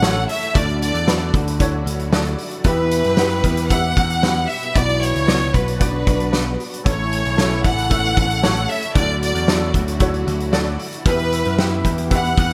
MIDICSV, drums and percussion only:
0, 0, Header, 1, 2, 480
1, 0, Start_track
1, 0, Key_signature, 2, "major"
1, 0, Tempo, 525394
1, 503, Time_signature, 4, 2, 24, 8
1, 11447, End_track
2, 0, Start_track
2, 0, Title_t, "Drums"
2, 23, Note_on_c, 9, 38, 110
2, 114, Note_off_c, 9, 38, 0
2, 265, Note_on_c, 9, 46, 69
2, 356, Note_off_c, 9, 46, 0
2, 389, Note_on_c, 9, 42, 56
2, 480, Note_off_c, 9, 42, 0
2, 504, Note_on_c, 9, 36, 106
2, 508, Note_on_c, 9, 42, 86
2, 596, Note_off_c, 9, 36, 0
2, 600, Note_off_c, 9, 42, 0
2, 633, Note_on_c, 9, 42, 33
2, 724, Note_off_c, 9, 42, 0
2, 752, Note_on_c, 9, 42, 92
2, 843, Note_off_c, 9, 42, 0
2, 869, Note_on_c, 9, 42, 50
2, 960, Note_off_c, 9, 42, 0
2, 984, Note_on_c, 9, 38, 127
2, 1076, Note_off_c, 9, 38, 0
2, 1223, Note_on_c, 9, 36, 91
2, 1233, Note_on_c, 9, 42, 64
2, 1314, Note_off_c, 9, 36, 0
2, 1324, Note_off_c, 9, 42, 0
2, 1348, Note_on_c, 9, 42, 62
2, 1439, Note_off_c, 9, 42, 0
2, 1462, Note_on_c, 9, 42, 87
2, 1463, Note_on_c, 9, 36, 95
2, 1554, Note_off_c, 9, 36, 0
2, 1554, Note_off_c, 9, 42, 0
2, 1709, Note_on_c, 9, 42, 70
2, 1800, Note_off_c, 9, 42, 0
2, 1822, Note_on_c, 9, 42, 41
2, 1913, Note_off_c, 9, 42, 0
2, 1942, Note_on_c, 9, 38, 110
2, 2033, Note_off_c, 9, 38, 0
2, 2056, Note_on_c, 9, 42, 38
2, 2147, Note_off_c, 9, 42, 0
2, 2178, Note_on_c, 9, 46, 71
2, 2269, Note_off_c, 9, 46, 0
2, 2295, Note_on_c, 9, 42, 56
2, 2386, Note_off_c, 9, 42, 0
2, 2413, Note_on_c, 9, 42, 83
2, 2419, Note_on_c, 9, 36, 100
2, 2504, Note_off_c, 9, 42, 0
2, 2510, Note_off_c, 9, 36, 0
2, 2661, Note_on_c, 9, 42, 91
2, 2753, Note_off_c, 9, 42, 0
2, 2778, Note_on_c, 9, 42, 42
2, 2869, Note_off_c, 9, 42, 0
2, 2896, Note_on_c, 9, 38, 127
2, 2988, Note_off_c, 9, 38, 0
2, 3023, Note_on_c, 9, 42, 35
2, 3115, Note_off_c, 9, 42, 0
2, 3141, Note_on_c, 9, 36, 82
2, 3146, Note_on_c, 9, 42, 67
2, 3233, Note_off_c, 9, 36, 0
2, 3237, Note_off_c, 9, 42, 0
2, 3263, Note_on_c, 9, 42, 61
2, 3354, Note_off_c, 9, 42, 0
2, 3384, Note_on_c, 9, 36, 98
2, 3384, Note_on_c, 9, 42, 81
2, 3475, Note_off_c, 9, 42, 0
2, 3476, Note_off_c, 9, 36, 0
2, 3626, Note_on_c, 9, 36, 100
2, 3632, Note_on_c, 9, 42, 65
2, 3717, Note_off_c, 9, 36, 0
2, 3723, Note_off_c, 9, 42, 0
2, 3746, Note_on_c, 9, 42, 44
2, 3837, Note_off_c, 9, 42, 0
2, 3866, Note_on_c, 9, 38, 123
2, 3958, Note_off_c, 9, 38, 0
2, 4102, Note_on_c, 9, 46, 70
2, 4193, Note_off_c, 9, 46, 0
2, 4227, Note_on_c, 9, 42, 62
2, 4318, Note_off_c, 9, 42, 0
2, 4344, Note_on_c, 9, 36, 105
2, 4344, Note_on_c, 9, 42, 83
2, 4436, Note_off_c, 9, 36, 0
2, 4436, Note_off_c, 9, 42, 0
2, 4469, Note_on_c, 9, 42, 37
2, 4560, Note_off_c, 9, 42, 0
2, 4593, Note_on_c, 9, 42, 79
2, 4685, Note_off_c, 9, 42, 0
2, 4711, Note_on_c, 9, 42, 48
2, 4803, Note_off_c, 9, 42, 0
2, 4827, Note_on_c, 9, 38, 116
2, 4918, Note_off_c, 9, 38, 0
2, 4949, Note_on_c, 9, 42, 33
2, 5041, Note_off_c, 9, 42, 0
2, 5064, Note_on_c, 9, 36, 89
2, 5070, Note_on_c, 9, 42, 57
2, 5156, Note_off_c, 9, 36, 0
2, 5162, Note_off_c, 9, 42, 0
2, 5187, Note_on_c, 9, 42, 59
2, 5279, Note_off_c, 9, 42, 0
2, 5304, Note_on_c, 9, 42, 92
2, 5306, Note_on_c, 9, 36, 98
2, 5395, Note_off_c, 9, 42, 0
2, 5397, Note_off_c, 9, 36, 0
2, 5546, Note_on_c, 9, 36, 110
2, 5552, Note_on_c, 9, 42, 75
2, 5638, Note_off_c, 9, 36, 0
2, 5643, Note_off_c, 9, 42, 0
2, 5665, Note_on_c, 9, 42, 45
2, 5756, Note_off_c, 9, 42, 0
2, 5784, Note_on_c, 9, 38, 98
2, 5876, Note_off_c, 9, 38, 0
2, 6028, Note_on_c, 9, 46, 72
2, 6120, Note_off_c, 9, 46, 0
2, 6154, Note_on_c, 9, 42, 57
2, 6246, Note_off_c, 9, 42, 0
2, 6267, Note_on_c, 9, 36, 106
2, 6270, Note_on_c, 9, 42, 97
2, 6359, Note_off_c, 9, 36, 0
2, 6361, Note_off_c, 9, 42, 0
2, 6511, Note_on_c, 9, 42, 76
2, 6602, Note_off_c, 9, 42, 0
2, 6624, Note_on_c, 9, 42, 40
2, 6716, Note_off_c, 9, 42, 0
2, 6744, Note_on_c, 9, 38, 106
2, 6836, Note_off_c, 9, 38, 0
2, 6984, Note_on_c, 9, 36, 92
2, 6987, Note_on_c, 9, 42, 60
2, 7075, Note_off_c, 9, 36, 0
2, 7079, Note_off_c, 9, 42, 0
2, 7111, Note_on_c, 9, 42, 54
2, 7202, Note_off_c, 9, 42, 0
2, 7223, Note_on_c, 9, 42, 81
2, 7226, Note_on_c, 9, 36, 101
2, 7314, Note_off_c, 9, 42, 0
2, 7317, Note_off_c, 9, 36, 0
2, 7465, Note_on_c, 9, 36, 102
2, 7471, Note_on_c, 9, 42, 72
2, 7556, Note_off_c, 9, 36, 0
2, 7562, Note_off_c, 9, 42, 0
2, 7587, Note_on_c, 9, 42, 51
2, 7679, Note_off_c, 9, 42, 0
2, 7707, Note_on_c, 9, 38, 119
2, 7798, Note_off_c, 9, 38, 0
2, 7823, Note_on_c, 9, 42, 42
2, 7914, Note_off_c, 9, 42, 0
2, 7940, Note_on_c, 9, 46, 71
2, 8032, Note_off_c, 9, 46, 0
2, 8063, Note_on_c, 9, 42, 60
2, 8154, Note_off_c, 9, 42, 0
2, 8181, Note_on_c, 9, 36, 98
2, 8181, Note_on_c, 9, 42, 84
2, 8272, Note_off_c, 9, 36, 0
2, 8272, Note_off_c, 9, 42, 0
2, 8429, Note_on_c, 9, 42, 88
2, 8520, Note_off_c, 9, 42, 0
2, 8546, Note_on_c, 9, 42, 48
2, 8637, Note_off_c, 9, 42, 0
2, 8662, Note_on_c, 9, 38, 118
2, 8754, Note_off_c, 9, 38, 0
2, 8900, Note_on_c, 9, 36, 87
2, 8907, Note_on_c, 9, 42, 60
2, 8992, Note_off_c, 9, 36, 0
2, 8999, Note_off_c, 9, 42, 0
2, 9025, Note_on_c, 9, 42, 63
2, 9116, Note_off_c, 9, 42, 0
2, 9135, Note_on_c, 9, 42, 82
2, 9140, Note_on_c, 9, 36, 108
2, 9226, Note_off_c, 9, 42, 0
2, 9231, Note_off_c, 9, 36, 0
2, 9263, Note_on_c, 9, 42, 41
2, 9355, Note_off_c, 9, 42, 0
2, 9388, Note_on_c, 9, 42, 71
2, 9479, Note_off_c, 9, 42, 0
2, 9504, Note_on_c, 9, 42, 50
2, 9595, Note_off_c, 9, 42, 0
2, 9619, Note_on_c, 9, 38, 114
2, 9710, Note_off_c, 9, 38, 0
2, 9860, Note_on_c, 9, 46, 74
2, 9951, Note_off_c, 9, 46, 0
2, 9980, Note_on_c, 9, 42, 53
2, 10072, Note_off_c, 9, 42, 0
2, 10102, Note_on_c, 9, 36, 110
2, 10102, Note_on_c, 9, 42, 81
2, 10193, Note_off_c, 9, 36, 0
2, 10193, Note_off_c, 9, 42, 0
2, 10226, Note_on_c, 9, 42, 35
2, 10317, Note_off_c, 9, 42, 0
2, 10346, Note_on_c, 9, 42, 88
2, 10437, Note_off_c, 9, 42, 0
2, 10462, Note_on_c, 9, 42, 42
2, 10553, Note_off_c, 9, 42, 0
2, 10584, Note_on_c, 9, 38, 124
2, 10675, Note_off_c, 9, 38, 0
2, 10824, Note_on_c, 9, 36, 84
2, 10829, Note_on_c, 9, 42, 63
2, 10915, Note_off_c, 9, 36, 0
2, 10920, Note_off_c, 9, 42, 0
2, 10943, Note_on_c, 9, 42, 59
2, 11034, Note_off_c, 9, 42, 0
2, 11061, Note_on_c, 9, 42, 86
2, 11065, Note_on_c, 9, 36, 103
2, 11153, Note_off_c, 9, 42, 0
2, 11157, Note_off_c, 9, 36, 0
2, 11187, Note_on_c, 9, 42, 44
2, 11278, Note_off_c, 9, 42, 0
2, 11306, Note_on_c, 9, 36, 99
2, 11311, Note_on_c, 9, 42, 71
2, 11397, Note_off_c, 9, 36, 0
2, 11403, Note_off_c, 9, 42, 0
2, 11447, End_track
0, 0, End_of_file